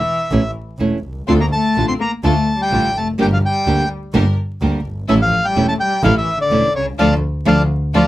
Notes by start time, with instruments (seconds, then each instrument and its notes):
Already playing: cello E3, bandoneon E5
0.31 double bass A1, nylon-string guitar E3 A3 C#4 E4
0.79 double bass E1, nylon-string guitar E3 A3 C#4 E4
1.03 double bass C2
1.27 double bass D2, nylon-string guitar D3 A3 D4 F4, cello C4, string section D4 F4 A4, bandoneon C6
1.40 cello A#3, bandoneon A#5
1.51 cello A3, bandoneon A5
1.76 double bass A1, nylon-string guitar D3 A3 D4 F4, string section D4 F4 A4
1.88 cello C4, bandoneon C6
1.99 cello A#3, bandoneon A#5
2.23 double bass D2, nylon-string guitar D3 A3 D4 F4, cello A3, string section D4 F4 A4, bandoneon A5
2.58 cello G3
2.62 bandoneon G5
2.71 double bass A1, nylon-string guitar D3 A3 D4 F4, string section D4 F4 A4
2.95 double bass F1, cello A3, bandoneon A5
3.18 double bass G1, nylon-string guitar D3 G3 A#3 D4 G4, cello G3, string section D4 G4 A#4, bandoneon G5
3.33 cello F3, bandoneon F5
3.44 cello G3, bandoneon G5
3.66 double bass D2, nylon-string guitar D3 G3 A#3 D4 G4, string section D4 G4 A#4
4.14 double bass G1, nylon-string guitar D3 G3 A#3 D4 G4, string section D4 G4 A#4
4.61 double bass D2, nylon-string guitar D3 G3 A#3 D4 G4, string section D4 G4 A#4
4.85 double bass G1
5.08 double bass A1, nylon-string guitar E3 A3 C#4 E4, cello E3, string section C#4 E4 A4, bandoneon E5
5.22 cello F3, bandoneon F5
5.45 cello G3, bandoneon G5
5.56 double bass E1, nylon-string guitar E3 A3 C#4 E4, string section C#4 E4 A4
5.68 cello A3, bandoneon A5
5.80 cello G3, bandoneon G5
6.03 double bass A1, nylon-string guitar E3 A3 C#4 E4, cello F3, string section C#4 E4 A4, bandoneon F5
6.16 cello E3, bandoneon E5
6.40 cello D3, bandoneon D5
6.50 double bass E1, nylon-string guitar E3 A3 C#4 E4, string section C#4 E4 A4
6.75 double bass C2, cello C#3, bandoneon C#5
6.98 double bass D2, nylon-string guitar F3 A3 D4, cello F3, string section D4 F4 A4, bandoneon D5 F5 A5
7.45 double bass D2, nylon-string guitar F3 A3 D4, cello F3, string section D4 F4 A4, bandoneon D5 F5 A5
7.94 double bass D2, cello F3, nylon-string guitar F3 A3 D4, string section D4 F4 A4, bandoneon D5 F5 A5